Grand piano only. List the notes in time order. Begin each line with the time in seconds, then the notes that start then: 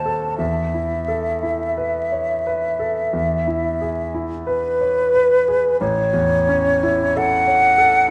Already playing: D#2 F#4 A4 C5 D#5
0.06 A4
0.38 E2
0.74 E4
1.08 A4
1.43 E4
1.78 B4
2.12 C#5
2.47 B4
2.79 A4
3.13 E2
3.47 E4
3.81 G#4
4.14 E4
4.47 B4
4.81 C#5
5.14 B4
5.48 G#4
5.81 A1
6.13 E2
6.49 C#4
6.83 E4
7.16 A4
7.47 C#5
7.78 A4